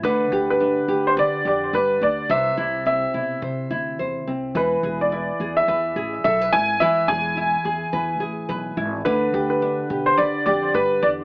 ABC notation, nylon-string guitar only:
X:1
M:4/4
L:1/16
Q:"Swing 16ths" 1/4=106
K:Ephr
V:1 name="Nylon-string guitar"
[D,B]2 G2 D2 G2 B2 G2 B2 D2 | [C,c]2 E2 C2 E2 c2 E2 c2 C2 | [E,B]2 ^G2 E2 G2 B2 G2 A B E2 | [E,B]2 ^G2 E2 G2 B2 G2 B2 E2 |
[D,B]2 G2 D2 G2 B2 G2 B2 D2 |]